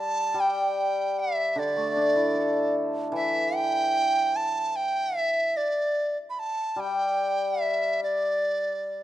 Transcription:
0.00 0.33 G3 soft
0.00 0.42 A5 medium
0.34 2.73 G3 soft
0.40 1.21 G5 medium
1.20 1.60 E5 medium
1.56 3.93 D3 soft
1.56 2.75 D5 medium
1.76 3.34 A3 soft
1.96 3.54 D4 soft
2.16 3.74 E4 soft
2.35 3.94 A4 soft
3.12 5.54 E3 medium
3.12 3.57 E5 medium
3.56 4.38 G5 loud
4.36 4.77 A5 medium
4.76 5.19 G5 medium
5.17 5.58 E5 medium
5.57 6.17 D5 medium
6.30 6.41 B5 medium
6.39 6.81 A5 medium
6.76 9.03 G3 soft
6.76 7.63 G5 medium
7.61 8.01 E5 medium
8.03 9.03 D5 medium

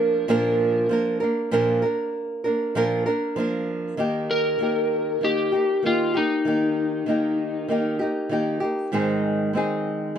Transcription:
0.00 0.28 F3 medium
0.00 0.29 A#3 medium
0.00 0.30 D4 medium
0.00 0.30 A#4 medium
0.00 0.87 A#4 medium
0.28 0.90 A#2 medium
0.28 0.89 F3 medium
0.28 0.90 A#3 medium
0.28 0.91 D4 medium
0.28 0.92 A#4 medium
0.89 1.20 F3 medium
0.89 1.21 A#3 medium
0.89 1.21 D4 medium
0.89 1.19 A#4 medium
1.20 1.52 A#3 soft
1.20 1.52 D4 medium
1.20 1.51 A#4 medium
1.51 1.82 A#2 medium
1.51 1.83 F3 medium
1.51 1.83 A#3 medium
1.51 1.83 D4 medium
1.51 1.81 A#4 medium
1.82 2.47 A#3 soft
1.82 2.45 D4 soft
1.82 2.44 A#4 medium
2.44 2.75 A#3 soft
2.44 2.75 D4 soft
2.44 2.75 A#4 soft
2.75 3.06 A#2 medium
2.75 3.06 F3 medium
2.75 3.06 A#3 medium
2.75 3.06 D4 medium
2.75 3.05 A#4 medium
3.06 3.36 A#3 soft
3.06 3.37 D4 medium
3.06 3.37 A#4 medium
3.36 3.97 F3 medium
3.36 3.98 A#3 medium
3.36 3.98 D4 medium
3.36 3.99 A#4 medium
3.97 4.58 D#3 medium
3.97 4.59 A#3 medium
3.97 4.61 D#4 medium
3.97 4.61 G4 medium
4.31 5.25 A#4 medium
4.59 5.20 D#3 soft
4.59 5.21 A#3 medium
4.59 5.23 D#4 medium
4.59 5.23 G4 soft
5.21 5.52 D#3 soft
5.21 5.53 A#3 soft
5.21 5.53 D#4 medium
5.21 5.86 G4 medium
5.21 5.51 G4 medium
5.52 5.83 A#3 soft
5.52 5.84 D#4 soft
5.52 5.83 G4 soft
5.83 6.14 D#3 soft
5.83 6.15 A#3 soft
5.83 6.15 D#4 medium
5.83 6.17 F4 medium
5.83 6.13 G4 soft
6.14 6.45 A#3 soft
6.14 6.46 D#4 soft
6.14 7.97 D#4 medium
6.14 6.45 G4 soft
6.45 7.06 D#3 medium
6.45 7.07 A#3 soft
6.45 7.08 D#4 medium
6.45 7.08 G4 medium
7.06 7.68 D#3 medium
7.06 7.69 A#3 medium
7.06 7.71 D#4 medium
7.06 7.70 G4 medium
7.68 8.00 D#3 medium
7.68 8.00 A#3 medium
7.68 8.00 D#4 medium
7.68 7.98 G4 medium
7.99 8.30 A#3 soft
7.99 8.30 D#4 soft
7.99 8.30 G4 medium
8.29 8.61 D#3 medium
8.29 8.62 A#3 medium
8.29 8.61 D#4 medium
8.29 8.59 G4 medium
8.60 8.93 A#3 soft
8.60 8.93 D#4 soft
8.60 8.92 G4 soft
8.92 9.54 G#2 medium
8.92 10.18 D#3 medium
8.92 9.53 G#3 medium
8.92 9.54 C4 medium
8.92 9.55 D#4 medium
8.92 9.57 G#4 medium
9.53 10.15 G#3 medium
9.53 10.17 C4 medium
9.53 10.18 D#4 medium
9.53 10.18 G#4 medium

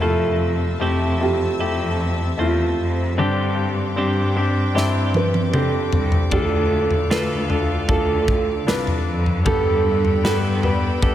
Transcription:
0.00 0.77 F2 medium
0.00 1.17 C3 medium
0.00 0.77 A3 medium
0.00 6.29 C4 medium
0.00 0.81 E4 medium
0.00 0.77 E4 medium
0.00 0.77 F4 medium
0.00 0.81 A4 medium
0.00 1.22 A4 medium
0.00 3.15 E5 medium
0.00 3.15 A5 medium
0.00 3.15 E6 medium
0.80 1.56 F2 medium
0.80 1.18 A3 medium
0.80 2.39 C4 medium
0.80 1.18 E4 soft
0.80 1.21 E4 medium
0.80 1.19 G4 medium
0.80 1.59 A4 medium
1.20 1.58 A3 medium
1.20 1.58 E4 medium
1.20 1.58 F4 medium
1.20 2.44 G4 medium
1.60 2.35 F2 medium
1.60 2.35 A3 medium
1.60 2.35 E4 medium
1.60 2.35 G4 medium
1.60 3.19 A4 medium
2.38 2.76 E2 medium
2.38 3.14 A3 medium
2.38 3.97 C4 soft
2.38 3.14 F4 medium
2.38 3.19 F4 medium
2.38 3.14 E5 soft
2.79 3.19 F2 medium
3.18 6.32 G2 medium
3.18 4.33 G2 medium
3.18 3.94 G2 medium
3.18 4.33 D3 medium
3.18 3.93 C4 medium
3.18 3.94 D4 medium
3.18 4.73 D4 medium
3.18 3.97 G4 medium
3.18 3.94 G4 medium
3.18 9.43 D5 medium
3.18 6.29 G5 medium
3.18 9.43 D6 medium
3.96 4.71 G2 medium
3.96 4.34 C4 medium
3.96 5.52 C4 soft
3.96 4.34 D4 medium
3.96 4.36 D4 medium
3.96 4.35 G4 medium
3.96 4.74 G4 medium
4.36 4.73 C4 medium
4.36 4.74 D4 medium
4.36 7.11 D4 medium
4.36 4.74 G4 medium
4.75 5.54 G2 medium
4.75 5.50 C4 medium
4.75 5.50 D4 medium
4.75 5.50 E4 medium
4.75 6.32 G4 medium
4.75 snare soft
5.14 5.54 B4 medium
5.14 high tom medium
5.34 high tom medium
5.53 5.90 F2 medium
5.53 6.40 C4 soft
5.53 6.28 C4 medium
5.53 6.29 D4 medium
5.53 6.29 G4 medium
5.53 6.32 A4 medium
5.53 mid tom medium
5.93 6.30 C2 medium
5.93 floor tom medium
6.12 floor tom medium
6.31 7.06 D2 medium
6.31 7.46 A2 medium
6.31 9.82 D3 medium
6.31 7.07 D4 medium
6.31 7.07 F4 medium
6.31 11.15 A4 medium
6.31 7.11 A4 medium
6.31 7.07 A4 medium
6.31 7.12 A4 medium
6.31 9.42 F5 medium
6.31 kick medium
6.31 floor tom medium
6.91 floor tom soft
7.10 7.85 D2 medium
7.10 7.48 D4 medium
7.10 8.68 D4 medium
7.10 7.48 F4 medium
7.10 7.48 A4 medium
7.10 7.88 A4 medium
7.10 7.91 B4 medium
7.10 snare loud
7.49 7.87 D4 medium
7.49 9.54 F4 soft
7.49 7.87 F4 medium
7.49 7.88 A4 medium
7.49 floor tom soft
7.88 8.64 D2 medium
7.88 8.63 D4 medium
7.88 8.64 F4 medium
7.88 9.46 A4 medium
7.88 8.64 A4 medium
7.88 8.69 A4 medium
7.88 kick medium
7.88 floor tom medium
8.28 kick medium
8.67 9.05 C2 medium
8.67 9.42 D4 medium
8.67 10.24 D4 medium
8.67 9.42 F4 medium
8.67 9.42 B4 medium
8.67 9.43 B4 medium
8.67 snare loud
8.87 floor tom medium
9.08 9.47 F2 medium
9.26 floor tom medium
9.45 10.20 G2 medium
9.45 10.59 G2 medium
9.45 11.15 G2 medium
9.45 10.60 D3 medium
9.45 10.20 B3 medium
9.45 10.20 G4 medium
9.45 10.21 A4 loud
9.45 10.25 A4 medium
9.45 10.21 A4 medium
9.45 11.15 D5 medium
9.45 11.15 G5 medium
9.45 11.15 B5 medium
9.45 kick loud
9.45 floor tom loud
10.05 floor tom soft
10.24 10.99 G2 medium
10.24 10.61 B3 medium
10.24 11.15 B3 medium
10.24 10.64 D4 medium
10.24 10.61 G4 medium
10.24 11.03 A4 medium
10.24 10.36 A4 medium
10.24 10.62 B4 medium
10.24 snare loud
10.62 11.00 B3 medium
10.62 11.15 D4 medium
10.62 11.01 G4 medium
10.62 11.01 B4 medium
10.62 11.15 B4 medium
10.62 floor tom medium
11.02 11.15 G2 medium
11.02 11.15 B3 medium
11.02 11.15 G4 medium
11.02 11.15 A4 medium
11.02 kick medium
11.02 floor tom medium

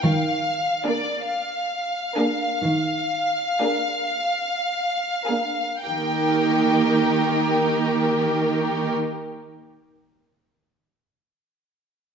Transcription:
0.04 1.04 D#3 soft
0.04 0.85 F5 soft
0.85 1.16 A#3 soft
0.85 1.16 D4 soft
0.85 1.17 G#4 soft
0.85 1.17 A#4 soft
0.85 1.28 D5 soft
1.27 5.81 F5 medium
2.16 2.51 A#3 soft
2.16 2.50 D4 soft
2.16 2.51 G#4 soft
2.16 2.51 A#4 soft
2.62 3.84 D#3 soft
3.60 3.99 A#3 soft
3.60 3.99 D4 soft
3.60 4.00 G#4 soft
3.60 4.00 A#4 soft
5.27 5.72 A#3 soft
5.27 5.72 D4 soft
5.27 5.71 G#4 soft
5.27 5.71 A#4 soft
5.85 8.93 D#3 soft
5.85 8.93 A#3 soft
5.85 8.93 D#4 soft
5.85 8.93 G4 soft
5.85 8.93 A#4 soft
5.85 8.92 G5 soft

